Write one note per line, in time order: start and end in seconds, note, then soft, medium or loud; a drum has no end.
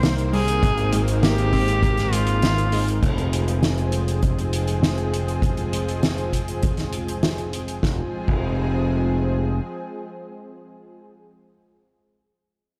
0.00 0.60 C2 medium
0.00 2.99 D#3 medium
0.00 2.99 A#3 medium
0.00 0.23 A#3 medium
0.00 2.99 C4 medium
0.00 0.21 C5 loud
0.00 0.60 G5 medium
0.00 snare loud
0.00 closed hi-hat medium
0.18 closed hi-hat soft
0.33 0.53 G3 medium
0.33 1.11 G#4 loud
0.33 open hi-hat medium
0.48 closed hi-hat medium
0.63 3.00 G#1 medium
0.63 0.75 D#3 medium
0.63 3.00 G#3 medium
0.63 kick loud
0.63 closed hi-hat medium
0.78 closed hi-hat soft
0.93 1.13 G#3 medium
0.93 closed hi-hat loud
1.08 closed hi-hat medium
1.23 1.35 A#3 loud
1.23 2.14 G4 loud
1.23 snare loud
1.23 closed hi-hat medium
1.38 closed hi-hat soft
1.53 1.72 C4 loud
1.53 kick medium
1.53 open hi-hat medium
1.68 closed hi-hat medium
1.83 1.95 A#3 medium
1.83 kick loud
1.83 closed hi-hat medium
1.97 snare soft
1.97 closed hi-hat soft
2.13 2.33 G#3 medium
2.13 2.91 F4 loud
2.13 closed hi-hat loud
2.27 closed hi-hat medium
2.42 2.71 D#3 medium
2.42 snare loud
2.42 closed hi-hat medium
2.58 closed hi-hat soft
2.72 2.93 G#3 loud
2.72 open hi-hat loud
2.88 closed hi-hat medium
3.03 7.80 F1 medium
3.03 7.79 F3 medium
3.03 7.79 G#3 medium
3.03 7.79 C4 medium
3.03 7.79 G#4 medium
3.03 kick loud
3.03 closed hi-hat medium
3.03 crash medium
3.18 closed hi-hat soft
3.33 closed hi-hat loud
3.48 closed hi-hat medium
3.63 snare loud
3.63 closed hi-hat medium
3.78 closed hi-hat soft
3.92 closed hi-hat medium
4.08 closed hi-hat medium
4.23 kick loud
4.23 closed hi-hat medium
4.39 closed hi-hat soft
4.53 closed hi-hat loud
4.68 closed hi-hat medium
4.83 snare loud
4.83 closed hi-hat medium
4.98 closed hi-hat soft
5.14 closed hi-hat loud
5.28 closed hi-hat medium
5.42 kick loud
5.42 closed hi-hat medium
5.57 closed hi-hat soft
5.73 closed hi-hat loud
5.88 closed hi-hat medium
6.03 snare loud
6.03 closed hi-hat medium
6.18 closed hi-hat soft
6.33 kick medium
6.33 closed hi-hat loud
6.48 closed hi-hat medium
6.63 kick loud
6.63 closed hi-hat medium
6.77 snare soft
6.77 closed hi-hat soft
6.93 closed hi-hat medium
7.08 closed hi-hat medium
7.23 snare loud
7.23 closed hi-hat medium
7.38 closed hi-hat soft
7.53 closed hi-hat medium
7.68 closed hi-hat medium
7.83 8.00 F1 medium
7.83 10.99 F3 medium
7.83 10.99 G#3 medium
7.83 10.99 C4 medium
7.83 10.99 G#4 medium
7.83 kick loud
7.83 snare medium
8.28 9.59 F1 medium
8.28 kick loud
8.28 crash medium